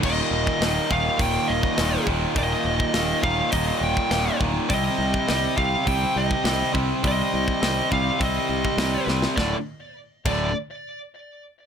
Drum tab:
CC |x---------------|----------------|----------------|----------------|
HH |----o---o---o---|o---o---o---o---|o---o---o---o---|o---o---o---o---|
SD |----o-------o---|----o-------o---|----o-------o---|----o-------o-oo|
BD |o--o--o-o--o--o-|o--o--o-o--o--o-|o--o--o-o--o--o-|o--o--o-o--o----|

CC |------x---------|
HH |----------------|
SD |o---------------|
BD |o-----o---------|